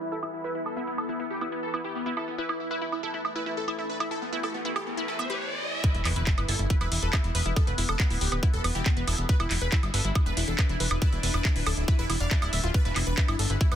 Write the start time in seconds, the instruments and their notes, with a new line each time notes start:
Already playing: synth drone E3 B3, ambient pad E4 B4 E5 B5
0.01 supersaw synth E4
0.12 synth arpeggio sound E4, supersaw synth A4
0.23 synth arpeggio sound E4, supersaw synth E4, high woodblock
0.34 supersaw synth E4
0.44 synth arpeggio sound E4, supersaw synth B4
0.55 synth arpeggio sound E4, supersaw synth E4
0.66 supersaw synth A4, high woodblock
0.77 supersaw synth B3, synth arpeggio sound E4
0.87 supersaw synth B3, synth arpeggio sound E4
0.98 supersaw synth A4, high woodblock
1.09 supersaw synth B3, synth arpeggio sound E4
1.20 supersaw synth B3, synth arpeggio sound E4
1.31 supersaw synth G4
1.41 supersaw synth B3, synth arpeggio sound E4, high woodblock
1.52 supersaw synth B3, synth arpeggio sound E4
1.63 supersaw synth A4
1.74 supersaw synth B3, synth arpeggio sound E4, high woodblock
1.84 synth arpeggio sound E4, supersaw synth G4
1.95 supersaw synth B3
2.06 supersaw synth B3, synth arpeggio sound E4
2.17 synth arpeggio sound E4, supersaw synth A4, high woodblock
2.28 supersaw synth B3
2.38 synth drone A3, synth arpeggio sound E4, supersaw synth B4, riser
2.49 synth arpeggio sound E4, supersaw synth E4, high woodblock
2.60 supersaw synth E4
2.71 synth arpeggio sound E4, supersaw synth B4
2.82 synth arpeggio sound E4, supersaw synth E4
2.92 supersaw synth E4, high woodblock
3.03 synth arpeggio sound E4, supersaw synth A4
3.14 synth arpeggio sound E4, supersaw synth E4
3.25 supersaw synth E4, high woodblock
3.36 synth arpeggio sound E4, supersaw synth B4
3.46 synth arpeggio sound E4, supersaw synth E4
3.57 supersaw synth A4
3.68 synth arpeggio sound E4, supersaw synth E4, high woodblock
3.79 synth arpeggio sound E4, supersaw synth E4
3.90 supersaw synth B4
4.00 synth arpeggio sound E4, supersaw synth E4, high woodblock
4.11 synth arpeggio sound E4, supersaw synth A4
4.22 supersaw synth B3
4.33 supersaw synth B3, synth arpeggio sound E4
4.43 synth arpeggio sound E4, supersaw synth A4, high woodblock
4.54 supersaw synth B3
4.65 supersaw synth B3, synth arpeggio sound E4
4.76 synth arpeggio sound E4, supersaw synth G4, high woodblock
4.87 supersaw synth B3
4.97 supersaw synth B3, synth arpeggio sound E4
5.08 synth arpeggio sound E4, supersaw synth A4
5.19 supersaw synth B3, synth arpeggio sound E5, high woodblock
5.30 supersaw synth G4, synth arpeggio sound B4
5.84 synth drone E3 B3, synth arpeggio sound E4, supersaw synth B4, kick, closed hi-hat, impact
5.95 analog synth bass E1, supersaw synth E4, closed hi-hat
6.05 analog synth bass E1, supersaw synth E4, synth arpeggio sound B4, clap, open hi-hat, high woodblock
6.16 analog synth bass E1, synth arpeggio sound E4, supersaw synth B4, closed hi-hat
6.27 supersaw synth E4, kick, clap, closed hi-hat
6.38 analog synth bass G1, supersaw synth E4, synth arpeggio sound B4, closed hi-hat, high woodblock
6.48 analog synth bass G1, synth arpeggio sound E4, supersaw synth A4, open hi-hat
6.59 analog synth bass G1, supersaw synth E4, closed hi-hat
6.70 supersaw synth E4, synth arpeggio sound B4, kick, closed hi-hat
6.81 analog synth bass E1, synth arpeggio sound E4, supersaw synth B4, closed hi-hat, high woodblock
6.92 analog synth bass E1, supersaw synth E4, open hi-hat
7.02 analog synth bass E1, supersaw synth A4, synth arpeggio sound B4, closed hi-hat
7.13 synth arpeggio sound E4, supersaw synth E4, kick, clap, closed hi-hat, high woodblock
7.24 analog synth bass E1, supersaw synth E4, closed hi-hat
7.35 analog synth bass E1, synth arpeggio sound B4, supersaw synth B4, open hi-hat
7.46 analog synth bass E1, synth arpeggio sound E4, supersaw synth E4, closed hi-hat
7.56 supersaw synth A4, kick, closed hi-hat, high woodblock
7.67 analog synth bass E1, supersaw synth B3, synth arpeggio sound B4, closed hi-hat
7.78 analog synth bass E1, supersaw synth B3, synth arpeggio sound E4, open hi-hat
7.89 analog synth bass E1, supersaw synth A4, closed hi-hat, high woodblock
8.00 supersaw synth B3, synth arpeggio sound B4, kick, clap, closed hi-hat
8.10 analog synth bass D1, supersaw synth B3, synth arpeggio sound E4, open hi-hat
8.21 analog synth bass D1, supersaw synth G4, open hi-hat
8.32 analog synth bass D1, supersaw synth B3, synth arpeggio sound B4, closed hi-hat, high woodblock
8.43 supersaw synth B3, synth arpeggio sound E4, kick, closed hi-hat
8.53 analog synth bass E1, supersaw synth A4, closed hi-hat
8.64 analog synth bass E1, supersaw synth B3, synth arpeggio sound B4, open hi-hat, high woodblock
8.75 analog synth bass E1, synth arpeggio sound E4, supersaw synth G4, closed hi-hat
8.86 supersaw synth B3, kick, clap, closed hi-hat
8.97 analog synth bass E1, supersaw synth B3, synth arpeggio sound B4, closed hi-hat
9.07 analog synth bass E1, synth arpeggio sound E4, supersaw synth A4, open hi-hat, high woodblock
9.18 analog synth bass E1, supersaw synth B3, closed hi-hat
9.29 synth drone D4, supersaw synth B4, synth arpeggio sound B4, kick, closed hi-hat
9.40 analog synth bass E1, supersaw synth E4, synth arpeggio sound E4, closed hi-hat, high woodblock
9.51 analog synth bass E1, supersaw synth E4, clap, open hi-hat
9.61 analog synth bass E1, synth arpeggio sound B4, supersaw synth B4, closed hi-hat
9.72 supersaw synth E4, synth arpeggio sound E4, kick, clap, closed hi-hat
9.83 analog synth bass G1, supersaw synth E4, closed hi-hat, high woodblock
9.94 analog synth bass G1, supersaw synth A4, synth arpeggio sound B4, open hi-hat
10.05 analog synth bass G1, supersaw synth E4, synth arpeggio sound E4, closed hi-hat
10.15 supersaw synth E4, kick, closed hi-hat, high woodblock
10.26 analog synth bass E1, supersaw synth B4, synth arpeggio sound B4, closed hi-hat
10.37 analog synth bass E1, synth arpeggio sound E4, supersaw synth E4, open hi-hat
10.48 analog synth bass E1, supersaw synth A4, closed hi-hat
10.58 supersaw synth E4, synth arpeggio sound B4, kick, clap, closed hi-hat, high woodblock
10.69 analog synth bass E1, supersaw synth E4, synth arpeggio sound E4, closed hi-hat
10.80 analog synth bass E1, supersaw synth B4, open hi-hat
10.91 analog synth bass E1, supersaw synth E4, synth arpeggio sound B4, closed hi-hat, high woodblock
11.02 synth arpeggio sound E4, supersaw synth B4, kick, closed hi-hat
11.13 analog synth bass E1, supersaw synth E4, closed hi-hat
11.23 analog synth bass E1, supersaw synth E4, synth arpeggio sound B4, open hi-hat
11.34 analog synth bass E1, synth arpeggio sound E4, supersaw synth B4, closed hi-hat, high woodblock
11.45 supersaw synth E4, kick, clap, closed hi-hat
11.56 analog synth bass D1, supersaw synth E4, synth arpeggio sound B4, open hi-hat
11.66 analog synth bass D1, synth arpeggio sound E4, supersaw synth A4, open hi-hat, high woodblock
11.77 analog synth bass D1, supersaw synth E4, closed hi-hat
11.88 supersaw synth E4, synth arpeggio sound B4, kick, closed hi-hat
11.99 analog synth bass E1, synth arpeggio sound E4, supersaw synth B4, closed hi-hat
12.10 analog synth bass E1, synth arpeggio sound E4, supersaw synth E4, open hi-hat, high woodblock
12.20 analog synth bass E1, supersaw synth D5, synth arpeggio sound F5, closed hi-hat
12.31 synth arpeggio sound D4, supersaw synth E4, kick, clap, closed hi-hat
12.42 analog synth bass D1, supersaw synth E4, synth arpeggio sound E4, closed hi-hat, high woodblock
12.53 analog synth bass D1, synth arpeggio sound E4, supersaw synth E5, open hi-hat
12.64 analog synth bass D1, supersaw synth E4, synth arpeggio sound F4, closed hi-hat
12.74 synth drone B3, supersaw synth B4, kick, closed hi-hat
12.85 analog synth bass E1, supersaw synth E4, synth arpeggio sound B4, closed hi-hat
12.96 analog synth bass E1, supersaw synth E4, synth arpeggio sound E4, clap, open hi-hat, high woodblock
13.07 analog synth bass E1, supersaw synth B4, closed hi-hat
13.18 supersaw synth E4, synth arpeggio sound B4, kick, clap, closed hi-hat
13.28 analog synth bass G1, supersaw synth E4, synth arpeggio sound E4, closed hi-hat, high woodblock
13.39 analog synth bass G1, supersaw synth A4, open hi-hat
13.50 analog synth bass G1, supersaw synth E4, synth arpeggio sound B4, closed hi-hat
13.61 synth arpeggio sound E4, supersaw synth E4, kick, closed hi-hat
13.72 analog synth bass E1, supersaw synth B4, closed hi-hat, high woodblock